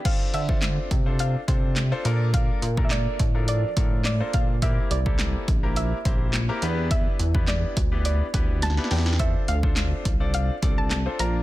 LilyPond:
<<
  \new Staff \with { instrumentName = "Synth pluck" } { \time 4/4 \key d \minor \tempo 4 = 105 f''8 e''4. f''2 | f''8.~ f''32 e''32 d''4 d''4 d''8 f''8 | e''8 d''4. e''2 | e''4 d''4 d''4 a''8 g''8 |
e''8 f''4. f''8. a''16 a''8 bes''8 | }
  \new Staff \with { instrumentName = "Grand piano" } { \time 4/4 \key d \minor <c' d' f' a' c''>8 r16 <c' d' f' a' c''>8. r16 <c' d' f' a' c''>8 r16 <c' d' f' a' c''>8 r16 <c' d' f' a' c''>16 <bes d' f' a' bes'>8~ | <bes d' f' a' bes'>8 r16 <bes d' f' a' bes'>8. r16 <f d' f' a' bes'>8 r16 <f d' f' a' bes'>8 r16 <bes d' f' a' c''>8 r16 | <bes c' e' g' bes'>8 r16 <bes c' e' g' a'>8. r16 <bes c' e' g' bes'>8 r16 <bes c' e' g' c''>8 r16 <bes c' e' g' bes'>16 <b d' e' g' b'>8~ | <b d' e' g' b'>8 r16 <b d' e' g' b'>8. r16 <b d' e' g' b'>8 r16 <b d' e' g' b'>8 r16 <b d' e' g' b'>8 r16 |
<c' d' f' a' c''>8 r16 <c' d' f' a' c''>8. r16 <c' d' f' a' d''>8 r16 <c' d' f' a' d''>8 r16 <c' d' f' a' c''>16 <bes d' f' bes'>8 | }
  \new Staff \with { instrumentName = "Analog synth bass" } { \clef bass \time 4/4 \key d \minor r8 d4 c4 c4 bes,8~ | bes,8 bes,4 a,4 a,4 bes,8~ | bes,8 c,4 bes,,4 bes,,4 e,8~ | e,8 e,4 d,4 d,4 e,8~ |
e,8 d,4 c,4 c,4 bes,,8 | }
  \new DrumStaff \with { instrumentName = "Drums" } \drummode { \time 4/4 <cymc hh bd>8 hh16 bd16 <hc hh sn>8 <hh bd>8 hh8 <hh bd>8 <hc hh sn>8 hh8 | <hh bd>8 hh16 bd16 <hc hh sn>8 <hh bd>8 hh8 <hh bd>8 <hc hh sn>8 <hh bd>8 | <hh bd>8 hh16 bd16 <hc hh sn>8 <hh bd>8 hh8 <hh bd>8 <hc hh sn>8 hh8 | <hh bd>8 hh16 bd16 <hc hh sn>8 <hh bd>8 hh8 <hh bd>8 <hh sn>32 sn32 sn32 sn32 <hho sn>32 sn32 sn32 sn32 |
<hh bd>8 hh16 bd16 <hc hh sn>8 <hh bd>8 hh8 <hh bd>8 <hc hh sn>8 hh8 | }
>>